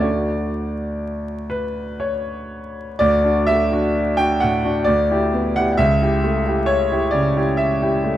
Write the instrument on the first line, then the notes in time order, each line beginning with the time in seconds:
grand piano
Already playing: D2 A3
0.00 D4 F#4 D5
1.50 B4
2.00 C#5
2.99 D2 D5
3.24 D4 F#4
3.46 A3 E5
3.72 D4 F#4
4.17 D4 F#4 G5
4.40 A2 F#5
4.64 D4 F#4
4.84 D2 D5
5.10 E4 G4
5.33 B3
5.56 E4 G4 F#5
5.72 F#5
5.77 C#2 E5
6.02 E4 G4
6.24 A3
6.46 E4 G4
6.66 C#5
6.92 E4 G4
7.11 C#3 D5
7.37 E4 G4
7.57 E5
7.82 E4 G4
8.04 A3